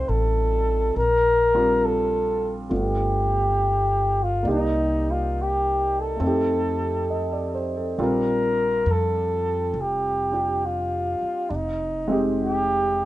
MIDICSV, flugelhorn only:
0, 0, Header, 1, 2, 480
1, 0, Start_track
1, 0, Key_signature, -2, "major"
1, 0, Tempo, 877193
1, 523, Time_signature, 4, 2, 24, 8
1, 7142, End_track
2, 0, Start_track
2, 0, Title_t, "Flugelhorn"
2, 0, Program_c, 0, 56
2, 0, Note_on_c, 0, 72, 69
2, 49, Note_on_c, 0, 69, 81
2, 57, Note_off_c, 0, 72, 0
2, 525, Note_off_c, 0, 69, 0
2, 532, Note_on_c, 0, 70, 94
2, 1013, Note_on_c, 0, 69, 80
2, 1021, Note_off_c, 0, 70, 0
2, 1392, Note_off_c, 0, 69, 0
2, 1510, Note_on_c, 0, 67, 69
2, 2315, Note_on_c, 0, 65, 74
2, 2323, Note_off_c, 0, 67, 0
2, 2456, Note_off_c, 0, 65, 0
2, 2469, Note_on_c, 0, 63, 82
2, 2796, Note_on_c, 0, 65, 71
2, 2804, Note_off_c, 0, 63, 0
2, 2963, Note_on_c, 0, 67, 73
2, 2971, Note_off_c, 0, 65, 0
2, 3284, Note_on_c, 0, 69, 70
2, 3293, Note_off_c, 0, 67, 0
2, 4231, Note_off_c, 0, 69, 0
2, 4386, Note_on_c, 0, 70, 93
2, 4876, Note_on_c, 0, 69, 79
2, 4884, Note_off_c, 0, 70, 0
2, 5368, Note_on_c, 0, 67, 66
2, 5376, Note_off_c, 0, 69, 0
2, 5828, Note_on_c, 0, 65, 68
2, 5836, Note_off_c, 0, 67, 0
2, 6292, Note_on_c, 0, 62, 49
2, 6300, Note_off_c, 0, 65, 0
2, 6321, Note_on_c, 0, 63, 78
2, 6329, Note_off_c, 0, 62, 0
2, 6690, Note_off_c, 0, 63, 0
2, 6802, Note_on_c, 0, 67, 83
2, 7142, Note_off_c, 0, 67, 0
2, 7142, End_track
0, 0, End_of_file